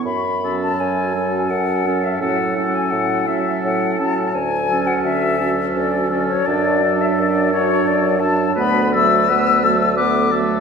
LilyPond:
<<
  \new Staff \with { instrumentName = "Flute" } { \time 3/4 \key fis \minor \tempo 4 = 85 b''8. a''16 gis''4 fis''8. e''16 | fis''8. gis''16 fis''8 e''8 fis''8 a''8 | gis''8. fis''16 e''8. r16 d''8. cis''16 | d''8. e''16 d''8 cis''8 d''8 a''8 |
\key b \dorian b''8 e'''4. d'''4 | }
  \new Staff \with { instrumentName = "Oboe" } { \time 3/4 \key fis \minor r8 a'4 a'4 a'8 | a'8 a'4 a'4 a'8 | r8 a'4 a'4 a'8 | a'8 a'4 a'4 a'8 |
\key b \dorian b'8 a'8 b'8 a'8 b'8 a'8 | }
  \new Staff \with { instrumentName = "Clarinet" } { \time 3/4 \key fis \minor r8 cis'4 cis'4 cis'8 | cis'8 cis'4 cis'4 cis'8 | r8 cis'4 cis'4 cis'8 | d'8 d'4 d'4 d'8 |
\key b \dorian b8 a8 b8 a8 b8 a8 | }
  \new Staff \with { instrumentName = "French horn" } { \clef bass \time 3/4 \key fis \minor r8 fis4 fis4 fis8 | fis8 fis4 fis4 fis8 | r8 fis4 fis4 fis8 | fis8 fis4 fis4 fis8 |
\key b \dorian a8 fis8 a8 fis8 a8 fis8 | }
  \new Staff \with { instrumentName = "Bassoon" } { \clef bass \time 3/4 \key fis \minor fis,4 fis,4 fis,4 | a,4 a,4 a,4 | d,4 d,4 d,4 | fis,4 fis,4 fis,4 |
\key b \dorian d,2. | }
>>